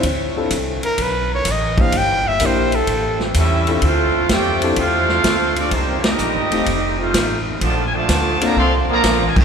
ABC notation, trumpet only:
X:1
M:4/4
L:1/8
Q:"Swing" 1/4=127
K:Dm
V:1 name="Trumpet"
z3 B =B ^c _e f | g e c A2 z3 | z8 | z8 |
z8 |]